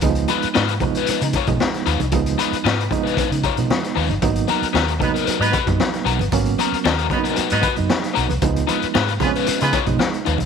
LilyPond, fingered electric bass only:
\new Staff \with { instrumentName = "Fingered electric bass" } { \clef bass \time 4/4 \key cis \mixolydian \tempo 4 = 114 cis,8 r8 gis,8 r8. cis16 r16 b,16 r8 dis,16 bis,,16 | cis,8 r8 gis,8 r8. cis16 r16 b,16 r8 dis,16 g,,16 | gis,,8 r8 dis,8 r8. gis,16 r16 fis,16 r8 b,,16 g,,16 | gis,,8 r8 dis,8 r8. gis,16 r16 fis,16 r8 b,,16 bis,,16 |
cis,8 r8 gis,8 r8. cis16 r16 b,16 r8 dis,16 bis,,16 | }